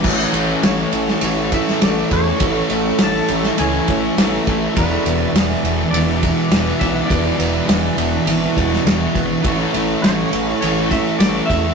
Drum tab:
CC |x---------------|----------------|----------------|----------------|
RD |--x-x-x-x-x-x-x-|x-x-x-x-x-x-x-x-|x-x-x-x-x-x-x-x-|x-x-x-x-x-x-x-x-|
SD |----o--o---oo---|----o--o----o---|----o-------o---|----o------oo---|
BD |o---------o---o-|o---------o---o-|o---------o---o-|o---------o---o-|

CC |----------------|
RD |x-x-x-x-x-x-x-x-|
SD |----o-------o---|
BD |o---------o---o-|